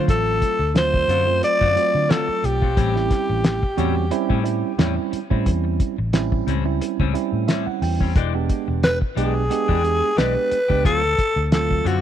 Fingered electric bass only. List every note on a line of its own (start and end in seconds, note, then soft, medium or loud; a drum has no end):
0.09 0.40 A1 medium
0.42 muted fingered electric bass stroke soft
0.59 1.06 D2 medium
1.08 1.40 F#2 medium
1.61 1.75 F#2 medium
1.95 2.09 D3 medium
2.29 muted fingered electric bass stroke soft
2.44 2.75 B1 medium
2.77 3.09 A1 medium
3.29 3.61 A1 medium
3.78 4.10 E2 medium
4.30 4.62 A2 medium
4.79 4.96 E2 medium
5.13 muted fingered electric bass stroke soft
5.31 5.46 A2 medium
5.46 5.78 E2 medium
5.80 muted fingered electric bass stroke soft
5.98 6.44 A1 medium
6.47 6.79 C#2 medium
7.00 7.14 C#2 medium
7.33 7.47 A2 medium
7.67 muted fingered electric bass stroke soft
7.82 8.14 E2 medium
8.16 8.47 E1 medium
8.68 8.99 E1 medium
9.17 9.48 B1 medium
9.69 10.00 E2 medium
10.18 10.35 B1 medium
10.51 muted fingered electric bass stroke soft
10.70 10.84 C#2 medium
10.85 11.16 D2 medium
11.36 11.82 D2 medium
11.85 12.01 F#2 medium